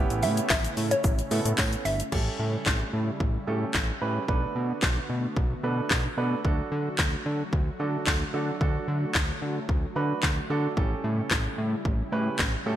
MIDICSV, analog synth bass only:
0, 0, Header, 1, 2, 480
1, 0, Start_track
1, 0, Tempo, 540541
1, 1884, Time_signature, 4, 2, 24, 8
1, 11332, End_track
2, 0, Start_track
2, 0, Title_t, "Analog synth bass"
2, 0, Program_c, 0, 38
2, 91, Note_on_c, 0, 33, 101
2, 205, Note_on_c, 0, 45, 95
2, 218, Note_off_c, 0, 33, 0
2, 360, Note_off_c, 0, 45, 0
2, 443, Note_on_c, 0, 33, 101
2, 600, Note_off_c, 0, 33, 0
2, 685, Note_on_c, 0, 45, 110
2, 840, Note_off_c, 0, 45, 0
2, 925, Note_on_c, 0, 33, 103
2, 1080, Note_off_c, 0, 33, 0
2, 1165, Note_on_c, 0, 45, 112
2, 1247, Note_off_c, 0, 45, 0
2, 1291, Note_on_c, 0, 45, 94
2, 1364, Note_off_c, 0, 45, 0
2, 1406, Note_on_c, 0, 45, 115
2, 1561, Note_off_c, 0, 45, 0
2, 1643, Note_on_c, 0, 31, 99
2, 1799, Note_off_c, 0, 31, 0
2, 1886, Note_on_c, 0, 33, 101
2, 2041, Note_off_c, 0, 33, 0
2, 2124, Note_on_c, 0, 45, 104
2, 2280, Note_off_c, 0, 45, 0
2, 2364, Note_on_c, 0, 33, 99
2, 2520, Note_off_c, 0, 33, 0
2, 2604, Note_on_c, 0, 45, 102
2, 2760, Note_off_c, 0, 45, 0
2, 2844, Note_on_c, 0, 33, 102
2, 3000, Note_off_c, 0, 33, 0
2, 3086, Note_on_c, 0, 45, 101
2, 3241, Note_off_c, 0, 45, 0
2, 3326, Note_on_c, 0, 33, 104
2, 3481, Note_off_c, 0, 33, 0
2, 3565, Note_on_c, 0, 45, 102
2, 3721, Note_off_c, 0, 45, 0
2, 3805, Note_on_c, 0, 35, 107
2, 3960, Note_off_c, 0, 35, 0
2, 4044, Note_on_c, 0, 47, 99
2, 4200, Note_off_c, 0, 47, 0
2, 4284, Note_on_c, 0, 35, 98
2, 4440, Note_off_c, 0, 35, 0
2, 4524, Note_on_c, 0, 47, 97
2, 4680, Note_off_c, 0, 47, 0
2, 4764, Note_on_c, 0, 35, 101
2, 4920, Note_off_c, 0, 35, 0
2, 5004, Note_on_c, 0, 47, 99
2, 5160, Note_off_c, 0, 47, 0
2, 5245, Note_on_c, 0, 35, 106
2, 5401, Note_off_c, 0, 35, 0
2, 5482, Note_on_c, 0, 47, 95
2, 5639, Note_off_c, 0, 47, 0
2, 5724, Note_on_c, 0, 38, 103
2, 5880, Note_off_c, 0, 38, 0
2, 5964, Note_on_c, 0, 50, 105
2, 6120, Note_off_c, 0, 50, 0
2, 6204, Note_on_c, 0, 38, 104
2, 6360, Note_off_c, 0, 38, 0
2, 6445, Note_on_c, 0, 50, 101
2, 6601, Note_off_c, 0, 50, 0
2, 6685, Note_on_c, 0, 38, 102
2, 6841, Note_off_c, 0, 38, 0
2, 6924, Note_on_c, 0, 50, 92
2, 7080, Note_off_c, 0, 50, 0
2, 7165, Note_on_c, 0, 38, 103
2, 7321, Note_off_c, 0, 38, 0
2, 7404, Note_on_c, 0, 50, 96
2, 7560, Note_off_c, 0, 50, 0
2, 7645, Note_on_c, 0, 38, 97
2, 7801, Note_off_c, 0, 38, 0
2, 7883, Note_on_c, 0, 50, 99
2, 8040, Note_off_c, 0, 50, 0
2, 8123, Note_on_c, 0, 38, 101
2, 8280, Note_off_c, 0, 38, 0
2, 8364, Note_on_c, 0, 50, 97
2, 8520, Note_off_c, 0, 50, 0
2, 8604, Note_on_c, 0, 38, 100
2, 8760, Note_off_c, 0, 38, 0
2, 8844, Note_on_c, 0, 50, 100
2, 9000, Note_off_c, 0, 50, 0
2, 9084, Note_on_c, 0, 38, 96
2, 9240, Note_off_c, 0, 38, 0
2, 9324, Note_on_c, 0, 50, 107
2, 9480, Note_off_c, 0, 50, 0
2, 9565, Note_on_c, 0, 33, 105
2, 9720, Note_off_c, 0, 33, 0
2, 9803, Note_on_c, 0, 45, 103
2, 9959, Note_off_c, 0, 45, 0
2, 10043, Note_on_c, 0, 33, 101
2, 10199, Note_off_c, 0, 33, 0
2, 10283, Note_on_c, 0, 45, 98
2, 10439, Note_off_c, 0, 45, 0
2, 10524, Note_on_c, 0, 33, 103
2, 10680, Note_off_c, 0, 33, 0
2, 10764, Note_on_c, 0, 45, 103
2, 10920, Note_off_c, 0, 45, 0
2, 11005, Note_on_c, 0, 33, 105
2, 11161, Note_off_c, 0, 33, 0
2, 11244, Note_on_c, 0, 45, 104
2, 11332, Note_off_c, 0, 45, 0
2, 11332, End_track
0, 0, End_of_file